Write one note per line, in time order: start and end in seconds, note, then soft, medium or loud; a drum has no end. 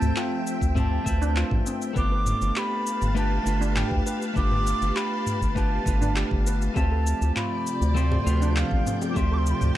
0.00 0.12 D2 medium
0.00 1.92 F3 medium
0.00 0.71 A3 medium
0.00 0.72 C4 medium
0.00 1.92 C4 medium
0.00 0.73 F4 medium
0.00 0.74 G4 medium
0.00 0.73 E5 medium
0.00 1.92 E5 medium
0.00 1.92 G5 medium
0.00 0.19 A5 loud
0.00 mid tom medium
0.00 shaker soft
0.16 0.25 F4 medium
0.16 0.77 G5 medium
0.16 clap loud
0.16 shaker soft
0.47 shaker medium
0.61 0.99 D2 medium
0.61 kick medium
0.61 shaker soft
0.75 1.02 A3 medium
0.75 1.02 C4 medium
0.75 0.90 C4 medium
0.75 1.03 E4 medium
0.75 1.03 F4 medium
0.75 1.03 G4 loud
0.75 1.63 A5 medium
0.75 kick medium
0.75 mid tom medium
0.75 shaker soft
1.03 1.44 D2 medium
1.03 1.91 A3 medium
1.03 1.92 C4 medium
1.03 1.93 F4 medium
1.03 1.92 E5 medium
1.03 kick loud
1.03 shaker medium
1.09 1.94 B4 loud
1.22 1.35 D4 loud
1.22 shaker soft
1.36 1.45 F4 medium
1.36 clap loud
1.36 shaker soft
1.51 1.62 A1 medium
1.51 kick loud
1.51 mid tom medium
1.67 1.80 C4 medium
1.67 shaker medium
1.82 shaker soft
1.93 2.34 G1 medium
1.93 3.11 A3 medium
1.93 3.12 B3 medium
1.93 3.12 D4 medium
1.93 3.13 F4 medium
1.93 6.72 G4 medium
1.93 6.72 B4 medium
1.93 2.10 B4 medium
1.93 6.72 F5 medium
1.93 6.72 A5 medium
1.93 kick loud
1.93 shaker soft
1.98 3.14 G4 medium
1.98 2.60 D6 loud
2.12 2.25 B4 medium
2.26 mid tom medium
2.26 shaker medium
2.41 2.52 G1 medium
2.41 shaker soft
2.56 2.65 G4 medium
2.56 3.17 B5 loud
2.56 clap medium
2.56 shaker soft
2.87 shaker medium
3.01 3.39 G1 medium
3.01 mid tom medium
3.01 shaker soft
3.15 3.42 A3 medium
3.15 3.42 B3 medium
3.15 3.42 D4 medium
3.15 3.43 F4 medium
3.15 3.43 G4 loud
3.15 3.30 B4 medium
3.15 3.79 A5 loud
3.15 shaker soft
3.43 3.84 G1 medium
3.43 4.31 A3 loud
3.43 4.32 B3 medium
3.43 4.32 D4 medium
3.43 4.33 F4 medium
3.43 shaker medium
3.48 4.34 B4 loud
3.61 3.75 D4 loud
3.61 shaker soft
3.76 3.84 G4 medium
3.76 4.22 G5 medium
3.76 clap loud
3.76 mid tom medium
3.76 shaker soft
3.91 4.02 D2 medium
3.91 kick loud
4.06 4.20 B4 medium
4.06 shaker medium
4.22 shaker soft
4.34 4.74 G1 medium
4.34 5.51 A3 medium
4.34 5.52 B3 medium
4.34 5.53 D4 medium
4.34 5.53 F4 medium
4.34 4.50 B4 medium
4.34 4.98 D6 loud
4.34 kick loud
4.34 shaker soft
4.39 5.54 G4 medium
4.51 4.65 B4 medium
4.51 mid tom medium
4.67 shaker medium
4.82 4.92 G1 medium
4.82 shaker soft
4.96 5.04 G4 medium
4.96 5.56 B5 loud
4.96 clap loud
4.96 shaker soft
5.26 mid tom medium
5.26 shaker medium
5.41 5.79 G1 medium
5.41 kick medium
5.41 shaker soft
5.55 5.82 A3 medium
5.55 5.82 B3 medium
5.55 5.83 D4 medium
5.55 5.83 F4 medium
5.55 5.83 G4 medium
5.55 5.70 B4 medium
5.55 6.42 A5 medium
5.55 kick medium
5.55 shaker soft
5.84 6.24 G1 medium
5.84 6.71 A3 medium
5.84 6.72 B3 medium
5.84 6.73 D4 medium
5.84 6.73 F4 medium
5.84 kick loud
5.84 shaker medium
5.89 6.74 B4 loud
6.01 6.15 D4 loud
6.01 mid tom medium
6.01 shaker soft
6.16 6.24 G4 medium
6.16 clap loud
6.16 shaker soft
6.31 6.69 G1 medium
6.31 kick loud
6.47 6.60 B4 medium
6.47 shaker medium
6.62 shaker soft
6.74 7.14 D2 medium
6.74 9.77 C3 medium
6.74 9.77 F3 medium
6.74 7.91 A3 medium
6.74 7.92 C4 medium
6.74 6.90 C4 medium
6.74 9.13 D5 medium
6.74 7.93 E5 medium
6.74 9.77 G5 medium
6.74 7.33 A5 medium
6.74 kick loud
6.74 high bongo medium
6.74 shaker soft
6.78 7.94 F4 medium
6.78 7.94 G4 medium
6.92 7.05 A4 medium
7.07 shaker medium
7.21 7.32 D2 medium
7.21 shaker soft
7.36 7.44 F4 medium
7.36 7.99 B5 loud
7.36 clap medium
7.36 mid tom medium
7.36 shaker soft
7.67 shaker medium
7.81 8.19 D2 medium
7.81 shaker soft
7.94 8.22 A3 medium
7.94 8.22 C4 medium
7.94 8.10 C4 medium
7.94 8.22 E4 medium
7.94 8.23 F4 medium
7.94 8.23 G4 medium
7.94 8.57 C6 loud
7.94 shaker soft
8.11 mid tom medium
8.11 high bongo medium
8.24 8.64 D2 medium
8.24 9.11 A3 medium
8.24 9.12 C4 medium
8.24 9.13 F4 medium
8.24 9.13 F5 medium
8.24 shaker medium
8.29 9.14 B3 loud
8.42 8.55 D4 loud
8.42 shaker soft
8.56 8.65 F4 medium
8.56 8.99 F5 loud
8.56 clap loud
8.56 shaker soft
8.71 8.82 A1 medium
8.71 kick loud
8.86 9.00 C4 medium
8.86 mid tom medium
8.86 shaker medium
9.02 high bongo medium
9.02 shaker soft
9.10 9.77 A3 medium
9.10 9.18 D6 medium
9.15 9.54 D2 loud
9.15 9.77 C4 medium
9.15 9.30 C4 medium
9.15 9.77 F4 medium
9.15 9.77 G4 medium
9.15 9.77 D5 medium
9.15 9.77 E5 medium
9.15 9.35 C6 loud
9.15 kick loud
9.15 high bongo medium
9.15 shaker soft
9.31 9.45 A4 medium
9.31 9.39 D6 loud
9.38 9.52 C6 loud
9.46 shaker medium
9.51 9.56 B5 loud
9.55 9.76 C6 loud
9.61 9.72 D2 medium
9.61 mid tom medium
9.61 shaker soft